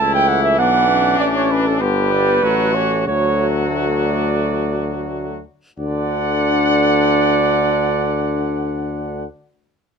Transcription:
Already playing: A5
0.00 C#2 E3 A3 E4
0.14 G5
0.28 F#5
0.43 E5
0.59 B1 B3 D4 F#5
0.89 C#4
1.19 A1 D5
1.35 C#5
1.51 B4
1.67 A4
1.81 G1 D3 B3 G4 B4
2.12 G3
2.43 A1 F#3 A3 F#4
2.74 E3 C#5
3.07 D2 F#3 A3 F#4 C#5
3.75 D5
5.79 D2 D3 D4 D5 F#5

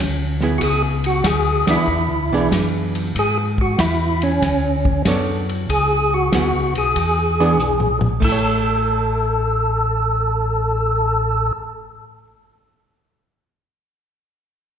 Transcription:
Already playing: D2
0.41 B3 E4 G#4, snare
0.58 C#2 F#4, kick, ride
0.63 G#4
1.04 F#4, ride
1.24 D2 G#4, kick, snare, hi-hat pedal, ride
1.67 D2 E3 B3 D4 E4 G#4, snare, ride
1.87 E2, kick
2.08 D2
2.30 B1 E3 B3
2.34 D4 G#4
2.52 F#2, kick, snare, hi-hat pedal, ride
2.95 ride
3.15 G#2 G#4, kick, ride
3.58 F#4, kick
3.79 E2 E4, kick, snare, hi-hat pedal, ride
4.22 C#4, ride
4.42 D2, kick, snare, ride
4.85 kick
5.05 F#2 B3 D4 A4 C#5, kick, snare, hi-hat pedal, ride
5.49 ride
5.69 C#2 G#4, kick, ride
6.14 F#4
6.32 D2 B3 E4 F#4 G#4, kick, snare, hi-hat pedal, ride
6.53 C#2
6.75 B1 G#4, ride
6.96 E2, kick, ride
7.40 E3 B3 D4 G#4
7.59 B1, hi-hat pedal
7.80 mid tom
8.01 mid tom
8.20 A1 A3, kick, crash
8.24 E4 A4
8.32 C#5

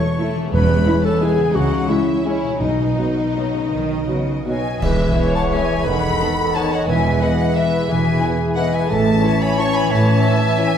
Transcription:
Already playing: E3 A3 E4 C#5 E5 C#6
0.18 A3 E4
0.35 E3
0.39 G#3
0.44 E4
0.48 E1 E2 B3 E5
0.53 E2 B4 B5
0.85 G#3 C#4 E4
1.05 A4 A5
1.20 G#3 B3 E4 G#4 G#5
1.37 C#3
1.41 G#3
1.46 E4 E5
1.54 C#2 C#3 D#4 F#4 F#5
1.89 G#3 C#4 E4 E5
2.25 G#3 C#4 E4 C#5
2.43 B2
2.48 B3
2.52 F#4
2.57 B1 B2 D#4 B4
2.62 D#5
2.97 B2 F#3 B3 F#4
3.36 F#3 B3 F#4
3.53 C#3
3.71 B1 D#3
4.08 C#3 F#3 B3 F#4
4.46 B2 F#3 B3 F#4 D#5 G#5
4.81 E1 E2 E3 G#4 B4 E5, concert bass drum, crash
4.90 E4
4.98 G#4
5.07 B4
5.15 G#3 B3 G#4 C#5
5.25 G#5
5.34 F#5 A5 B5
5.52 G#3 B3 G#4 E5 G#5
5.69 G#4
5.78 B3
5.85 E1 E2 D#3 E3 A4 B4 F#5 B5
5.94 D#4
6.03 A4
6.10 B4
6.19 D#3 B3 D#4 A4 D#5
6.29 A5
6.38 B5
6.47 A5
6.54 D#3 B3 D#4 A4 C#5 D#5 F#5 A5
6.63 B4
6.72 A4 D#5 F#5
6.80 B3
6.87 E1 E2 E3 B4 E5 G#5
6.97 E4
7.05 G#4
7.14 B4
7.21 E3 B3 E4 B4 D#5 E5 F#5
7.30 G#5
7.39 B5
7.55 E3 B3 E4 B4 E5
7.64 B4
7.74 G#4
7.82 B3
7.89 E1 E2 E3 G#4 E5 G#5
7.97 E4
8.05 G#4
8.15 B4
8.20 E3 B3 E4 B4 E5
8.33 G#5
8.41 B5
8.50 G#5
8.55 E3 B3 E4 B4 D#5 E5 F#5
8.73 G#4 E5 G#5
8.83 B3
8.89 A1 A2 E3 A4 C#5 E5 A5
8.98 C#4
9.07 E4
9.15 C#4
9.23 E3 C#4 E4 C#5
9.33 E5
9.41 C#5 G#5 B5
9.50 E5
9.57 E3 C#4 E4 C#5 A5 C#6
9.67 E4
9.75 C#4 G#5 B5
9.82 E3
9.90 A1 A2 E5 A5
10.06 E4
10.14 C#4
10.24 E3 C#4 E4 C#5 E5
10.33 E5
10.42 C#5
10.50 E5
10.57 E3 C#4 E4 C#5 E5 G#5

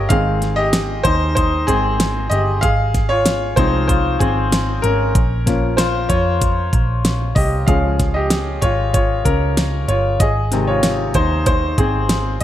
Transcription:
Already playing: C#4 F4 G4 A#4 C#5 D#5
0.09 G#1 D#3 G#3 C4 G#4 F5, kick, closed hi-hat
0.42 snare, closed hi-hat
0.56 G4 D#5
0.73 snare, closed hi-hat
1.03 D#2 D#4 C5, kick, closed hi-hat
1.35 D#4 C5, kick, closed hi-hat
1.67 G#1 D#3 G#3 C4 G#4, kick, closed hi-hat
2.00 snare, closed hi-hat
2.30 G1 G4 D#5, closed hi-hat
2.61 G#1 G#4 F5, kick, closed hi-hat
2.94 kick, snare, closed hi-hat
3.09 F4 C#5
3.26 snare, closed hi-hat
3.56 C2 F3 G#3 C4 D#4 C5, kick, closed hi-hat
3.87 F4 C5, kick, closed hi-hat
4.19 G#1 C4 G#4, kick, closed hi-hat
4.52 snare, closed hi-hat
4.82 G#1 C#4 A#4, closed hi-hat
5.15 A#1, kick, closed hi-hat
5.46 F3 A#3 C#4, kick, snare, closed hi-hat
5.77 F4 C5, snare, closed hi-hat
6.09 F2 F4 C#5, kick, closed hi-hat
6.42 kick, closed hi-hat
6.73 A#1, kick, closed hi-hat
7.05 snare, closed hi-hat
7.35 C2 G4 D#5, kick, open hi-hat
7.67 C#2 F3 G#3 C#4 G#4 F5, kick, closed hi-hat
7.99 kick, snare, closed hi-hat
8.14 G4 D#5
8.30 snare, closed hi-hat
8.62 G#1 F4 C#5, kick, closed hi-hat
8.94 F4 C#5, kick, closed hi-hat
9.25 C#2 C#4 A#4, kick, closed hi-hat
9.57 snare, closed hi-hat
9.88 G1 F4 C#5, closed hi-hat
10.20 G#1 G#4 D#5, kick, closed hi-hat
10.52 C3 D#3 G#3, snare, closed hi-hat
10.67 F4 C#5
10.83 snare, closed hi-hat
11.14 D#2 D#4 C5, kick, closed hi-hat
11.46 D#4 C5, kick, closed hi-hat
11.78 G#1 C4 G#4, kick, closed hi-hat
12.09 snare, closed hi-hat
12.41 D#5, closed hi-hat

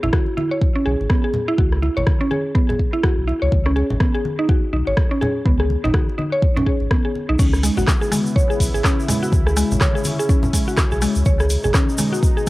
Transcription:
0.03 G#1 E4, low conga
0.13 F#4, kick, cross-stick, high conga
0.26 muted conga
0.37 E4, high conga
0.51 C#5
0.61 kick, muted conga
0.75 C#4
0.86 B1 G#4, high conga
1.00 G#1, muted conga
1.10 B3, kick, cross-stick
1.24 G#4
1.34 muted conga, low conga
1.48 E4
1.58 C#2 F#4, kick, high conga
1.72 cross-stick
1.82 E4, muted conga
1.97 G#1 C#5, low conga
2.07 kick, cross-stick, high conga
2.21 C#4, muted conga
2.31 G#4, high conga
2.55 B3, kick, muted conga
2.69 G#4, low conga
2.79 kick
2.93 E4, muted conga
3.03 F#4, kick, cross-stick, high conga
3.18 B1
3.27 E4, muted conga
3.42 C#2 C#5
3.52 C#2, kick, high conga
3.66 C#4, cross-stick
3.76 G#4, muted conga
3.90 G#1, low conga
4.00 B3, kick, cross-stick, high conga
4.14 G#4, muted conga
4.25 high conga
4.39 D#4
4.49 F#4, kick, muted conga
4.73 B1 D#4, high conga
4.87 G#1 C#5, muted conga
4.97 kick, cross-stick
5.11 C#4
5.21 G#4, muted conga, low conga
5.46 C#2 B3, kick, high conga
5.60 G#4, cross-stick
5.70 muted conga, high conga
5.84 G#1 D#4, low conga
5.94 F#4, kick, cross-stick, high conga
6.09 muted conga
6.18 D#4, high conga
6.32 C#5
6.42 kick, muted conga
6.56 C#4, low conga
6.66 G#4, kick
6.80 G#1, muted conga
6.91 B3, kick, cross-stick, high conga
7.05 G#4
7.15 muted conga, high conga
7.29 B1 D#4
7.39 C#2 C#3 B3 C#4 E4, kick, crash, high conga, shaker
7.53 cross-stick, shaker
7.63 G#3, open hi-hat, muted conga, shaker
7.77 G#1 F#4, low conga, shaker
7.88 kick, cross-stick, clap, high conga, shaker
8.01 G#4, muted conga, shaker
8.12 G#3, open hi-hat, high conga, shaker
8.26 shaker
8.36 C#5, kick, muted conga, shaker
8.50 G#4, shaker
8.60 B1, kick, open hi-hat, high conga, shaker
8.74 G#1 G#4, muted conga, shaker
8.84 C#4, kick, cross-stick, clap, shaker
9.00 shaker
9.08 G#3, open hi-hat, muted conga, low conga, shaker
9.23 F#4, shaker
9.32 C#2 C#4, kick, high conga, shaker
9.47 G#4, cross-stick, shaker
9.57 G#3, open hi-hat, muted conga, shaker
9.71 G#1, low conga, shaker
9.81 C#5, kick, cross-stick, clap, high conga, shaker
9.95 G#4, muted conga, shaker
10.04 open hi-hat, high conga, shaker
10.19 G#4, shaker
10.29 C#4, kick, muted conga, shaker
10.43 low conga, shaker
10.53 G#3, kick, open hi-hat, shaker
10.67 F#4, muted conga, shaker
10.77 kick, cross-stick, clap, high conga, shaker
10.92 B1 G#4, shaker
11.02 G#3, open hi-hat, muted conga, shaker
11.15 C#2, shaker
11.25 C#2 B2 G#3 D#4 C#5, kick, high conga, shaker
11.40 G#4, cross-stick, shaker
11.50 open hi-hat, muted conga, shaker
11.64 G#1 G#4, low conga, shaker
11.74 C#4, kick, cross-stick, clap, high conga, shaker
11.89 muted conga, shaker
11.98 G#3, open hi-hat, high conga, shaker
12.13 F#4, shaker
12.23 kick, muted conga, shaker
12.37 G#4, shaker

